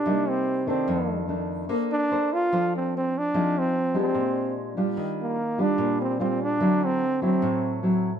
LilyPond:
<<
  \new Staff \with { instrumentName = "Nylon-string guitar" } { \time 4/4 \key f \major \tempo 4 = 147 << { <g bes ees'>4. <ees a d'>4. <ees a d'>4 | <d' a' c''>4 <d' a' c''>4 <d' a' c''>4. r8 | <c' ees' aes'>4 r8 <aes d' g'>2 <g d' f'>8~ | <g d' f'>4 r8 <g d' f'>4. <g d' f'>4 |
<fis c' e'>4 r8 <fis c' e'>4. <fis c' e'>8 r8 | } \\ { c2 f,2 | bes2 f2 | f2 bes,2 | ees2 bes,2 |
d2 a,2 | } >> }
  \new Staff \with { instrumentName = "Trombone" } { \time 4/4 \key f \major d'8 c'4 c'4. r4 | r8 d'4 f'4 c'8 c'8 d'8~ | d'8 c'4 c'4. r4 | r8 bes4 d'4 c'8 c'8 d'8~ |
d'8 c'4 c'4. r4 | }
>>